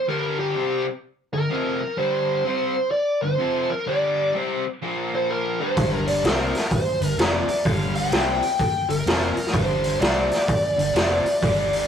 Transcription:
0.08 0.55 G2 medium
0.08 0.55 D3 medium
0.08 0.55 G3 medium
0.08 0.39 A#4 medium
0.39 0.83 G4 medium
0.55 0.85 C3 medium
0.55 0.85 G3 medium
0.55 0.85 C4 medium
1.33 1.47 G2 medium
1.33 1.48 D3 medium
1.33 2.00 A#4 medium
1.50 1.80 F2 medium
1.50 1.80 C3 medium
1.50 1.80 F3 medium
1.81 muted overdriven electric guitar stroke medium
1.97 2.45 G2 medium
1.97 2.44 D3 medium
1.97 2.44 G3 loud
1.97 2.91 C5 medium
2.45 2.74 C3 medium
2.45 2.75 G3 medium
2.45 2.75 C4 medium
2.91 3.20 D5 medium
3.22 3.37 G2 medium
3.22 3.37 D3 medium
3.22 3.71 C5 medium
3.38 3.68 F2 medium
3.38 3.69 C3 medium
3.38 3.69 F3 loud
3.70 3.88 A#4 medium
3.70 muted overdriven electric guitar stroke soft
3.87 4.34 G2 medium
3.87 4.34 D3 medium
3.87 4.34 G3 medium
3.87 4.32 D5 medium
4.34 4.64 C3 medium
4.34 4.64 G3 medium
4.34 4.64 C4 medium
4.83 5.59 A#2 medium
4.83 5.59 F3 medium
4.83 5.59 A#3 loud
5.15 5.31 C5 medium
5.31 5.61 A#4 medium
5.60 5.75 G2 medium
5.60 5.76 D3 medium
5.60 5.77 G3 medium
5.60 6.04 C5 medium
5.77 6.20 G1 medium
5.77 6.23 G2 medium
5.77 6.24 D3 medium
5.77 6.24 G3 medium
5.77 kick loud
5.77 open hi-hat medium
6.07 6.23 D5 medium
6.07 open hi-hat soft
6.24 6.52 C2 medium
6.24 6.53 C3 medium
6.24 6.53 G3 medium
6.24 6.53 C4 medium
6.24 6.69 A#4 medium
6.24 snare loud
6.24 open hi-hat medium
6.55 snare soft
6.55 open hi-hat soft
6.71 7.15 C5 medium
6.71 kick medium
6.71 open hi-hat medium
7.00 7.17 G1 medium
7.00 7.15 G2 medium
7.00 7.15 D3 medium
7.00 open hi-hat soft
7.18 7.46 F1 medium
7.18 7.47 F2 medium
7.18 7.47 C3 medium
7.18 7.48 F3 medium
7.18 7.67 D5 medium
7.18 snare loud
7.18 open hi-hat medium
7.48 muted overdriven electric guitar stroke soft
7.48 open hi-hat soft
7.65 8.09 G1 medium
7.65 8.12 G2 medium
7.65 8.12 D3 medium
7.65 8.12 G3 medium
7.65 7.96 F5 loud
7.65 kick loud
7.65 open hi-hat medium
7.95 8.93 G5 medium
7.95 open hi-hat medium
8.12 8.40 C2 medium
8.12 8.42 C3 medium
8.12 8.42 G3 medium
8.12 8.42 C4 medium
8.12 snare loud
8.12 open hi-hat medium
8.42 open hi-hat soft
8.59 kick medium
8.59 open hi-hat medium
8.89 9.05 G1 medium
8.89 9.03 G2 medium
8.89 9.03 D3 medium
8.89 9.56 A#4 medium
8.89 open hi-hat soft
9.06 9.34 F1 medium
9.06 9.36 F2 medium
9.06 9.36 C3 medium
9.06 9.36 F3 loud
9.06 snare loud
9.06 open hi-hat medium
9.36 muted overdriven electric guitar stroke medium
9.36 muted fingered electric bass stroke soft
9.36 open hi-hat soft
9.46 snare soft
9.53 9.97 G1 medium
9.53 10.00 G2 medium
9.53 9.99 D3 medium
9.53 9.99 G3 medium
9.53 10.00 C5 medium
9.53 kick loud
9.53 open hi-hat medium
9.84 open hi-hat soft
9.99 10.29 C2 medium
9.99 10.29 C3 medium
9.99 10.30 G3 medium
9.99 10.30 C4 medium
9.99 11.87 D5 medium
9.99 snare medium
9.99 open hi-hat medium
10.31 snare soft
10.31 open hi-hat soft
10.48 kick medium
10.48 open hi-hat medium
10.76 10.94 G1 medium
10.76 10.91 G2 medium
10.76 10.91 D3 medium
10.76 open hi-hat soft
10.94 11.23 F1 medium
10.94 11.24 F2 medium
10.94 11.24 C3 medium
10.94 11.24 F3 loud
10.94 snare loud
10.94 open hi-hat medium
11.24 muted fingered electric bass stroke soft
11.24 muted overdriven electric guitar stroke medium
11.24 open hi-hat soft
11.42 11.87 G1 medium
11.42 11.87 G2 medium
11.42 11.87 D3 medium
11.42 11.87 G3 medium
11.42 kick loud
11.42 open hi-hat medium
11.73 open hi-hat soft

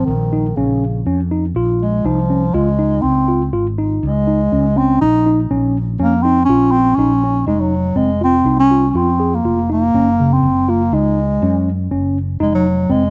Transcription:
0.05 0.53 A#1 medium
0.05 0.57 D#3 medium
0.33 0.45 D#4 medium
0.56 1.02 A#1 medium
0.56 1.06 C#3 medium
0.56 0.83 C#4 medium
1.06 1.51 F2 medium
1.06 1.19 C#4 medium
1.31 1.44 D#4 medium
1.55 2.00 A#1 medium
1.55 1.82 F4 medium
1.82 2.07 G#3 medium
2.04 2.50 C2 medium
2.04 2.55 F3 medium
2.04 2.18 D#4 medium
2.30 2.43 C#4 medium
2.54 2.99 C#2 loud
2.54 3.03 G#3 medium
2.54 2.67 F4 medium
2.79 3.05 D#4 medium
3.01 3.49 C#2 medium
3.01 3.52 C4 medium
3.28 3.41 F4 medium
3.53 3.98 G#1 medium
3.53 3.66 F4 medium
3.78 4.04 D#4 medium
4.03 4.48 C#2 loud
4.03 4.79 G#3 medium
4.27 4.40 D#4 medium
4.52 4.97 C#2 medium
4.52 4.65 C#4 medium
4.76 5.00 C4 medium
4.76 5.02 C#4 medium
5.01 5.47 A#1 loud
5.01 5.47 D#4 loud
5.26 5.39 D#4 medium
5.51 5.96 A#1 medium
5.51 5.76 C#4 medium
5.99 6.45 F2 medium
5.99 6.23 A#3 medium
5.99 6.12 C#4 medium
6.22 6.44 C4 loud
6.22 6.38 D#4 medium
6.45 6.72 C#4 loud
6.49 6.94 A#1 loud
6.49 6.75 F4 medium
6.71 6.97 C4 loud
6.95 7.43 A#1 medium
6.95 7.46 C#4 loud
6.95 7.11 D#4 medium
7.24 7.36 C#4 medium
7.46 7.92 F1 loud
7.46 7.61 G#3 medium
7.46 7.73 D#4 medium
7.60 7.98 F#3 medium
7.95 8.41 F1 medium
7.95 8.21 G#3 medium
7.95 8.09 C4 medium
8.21 8.57 C4 loud
8.21 8.34 F4 medium
8.44 8.90 C2 medium
8.44 8.59 D#4 medium
8.59 8.90 C#4 loud
8.71 8.84 F4 medium
8.90 8.98 C#4 medium
8.94 9.40 F2 loud
8.94 9.36 C4 medium
8.94 9.08 F4 medium
9.20 9.33 G#4 medium
9.35 9.70 A#3 medium
9.44 9.90 F1 medium
9.44 9.58 F4 medium
9.70 10.34 A#3 loud
9.70 9.82 D#4 medium
9.94 10.39 F#1 medium
9.94 10.07 C#4 medium
10.20 10.45 C#3 medium
10.33 10.71 C4 medium
10.43 10.88 F#1 medium
10.69 10.95 A#3 medium
10.69 10.81 F4 medium
10.92 11.37 C#2 loud
10.92 11.91 G#3 medium
10.92 11.19 D#4 medium
11.42 11.87 F#2 loud
11.42 11.68 C#4 medium
11.91 12.36 F#1 medium
11.91 12.17 C#4 medium
12.40 12.85 F1 medium
12.40 12.52 G#3 medium
12.40 12.66 D#4 loud
12.54 12.93 F#3 medium
12.89 13.10 F1 medium
12.89 13.10 G#3 medium
12.89 13.02 C4 medium

